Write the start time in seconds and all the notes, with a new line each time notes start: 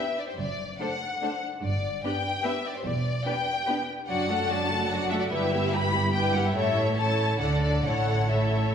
Already playing: E5
0.18 D5
0.28 C5
0.38 F#1 F#2 D5
0.80 A3 D4 A4 C5 F#5
1.22 A3 D4 A4 C5
1.63 G1 G2 D5
2.04 B3 D4 G4 B4 G5
2.43 B3 D4 G4 B4 E5
2.66 D5
2.76 C5
2.84 E1 E2 D5
3.26 B3 D4 G4 B4 G5
3.66 B3 D4 G4 B4
4.08 F#1 F#2 F#3 D4 F#4 D5 F#5
4.29 A3 F#4 A4 F#5
4.48 F#3 D4 F#4 D5 A5
4.70 A3 F#4 A4 F#5
4.90 F#3 D4 F#4 D5 F#5
5.10 A3 F#4 A4 E5 F#5
5.19 D5
5.29 G1 G2 G3 E4 G4 B4 E5
5.52 B3 E4 G4
5.72 G3 E4 G4 B4 B5
5.93 B3 E4 G4
6.14 G3 E4 G4 B4 G5
6.34 B3 E4 G4 F#5
6.45 E5
6.54 A1 A2 A3 E4 A4 C#5 E5
6.97 A3 E4 A4 C#5 A5
7.40 D2 D3 A3 D4 A4 D5 F#5
7.62 D5
7.84 A1 A2 A3 E4 A4 C#5 F#5
8.31 A3 E4 A4 C#5 E5